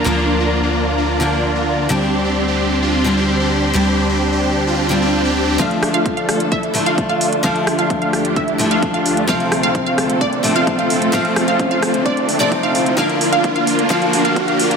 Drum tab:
HH |----------------|----------------|----------------|xxoxxxoxxxoxxxox|
SD |----------------|----------------|----------------|--r---r---------|
BD |----------------|----------------|----------------|o---o---o---o---|

HH |xxoxxxoxxxoxxxox|xxoxxxoxxxoxxxox|xxoxxxoxxxoxxxox|xxoxxxoxxxoxxxox|
SD |--r---r---------|--r---r---------|--r---r---------|----------------|
BD |o---o---o---o---|o---o---o---o---|o---o---o---o---|o---o---o---o---|